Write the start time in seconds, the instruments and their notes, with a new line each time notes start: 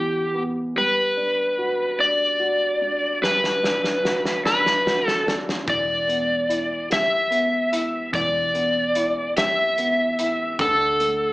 Already playing: upright piano E3 B3, electric slide guitar G4
0.34 upright piano B3
0.76 upright piano G3, electric slide guitar B4
1.17 upright piano D4
1.58 upright piano F#4
1.99 upright piano D4, electric slide guitar D5
2.39 upright piano F#4
2.81 upright piano D4
3.22 upright piano G3, electric slide guitar B4, snare
3.44 snare
3.63 upright piano D4, snare
3.84 snare
4.03 upright piano F#4, snare
4.25 snare
4.44 upright piano D4, electric slide guitar B4, snare
4.66 snare
4.86 upright piano F#4, snare
5.08 electric slide guitar A4, snare
5.26 upright piano D4, snare
5.49 snare
5.66 fingered electric bass E1, upright piano E3, electric slide guitar D5, kick, closed hi-hat
6.08 upright piano B3, closed hi-hat
6.49 upright piano E4, closed hi-hat
6.90 upright piano G4, electric slide guitar E5, snare, closed hi-hat
7.30 upright piano B3, closed hi-hat
7.72 upright piano E4, closed hi-hat
8.12 fingered electric bass E1, upright piano E3, electric slide guitar D5, kick, closed hi-hat
8.54 upright piano B3, closed hi-hat
8.95 upright piano E4, closed hi-hat
9.37 upright piano G4, electric slide guitar E5, snare, closed hi-hat
9.78 upright piano B3, closed hi-hat
10.19 upright piano E4, closed hi-hat
10.59 fingered electric bass D2, upright piano D3, electric slide guitar A4, kick, closed hi-hat
11.00 upright piano A3, closed hi-hat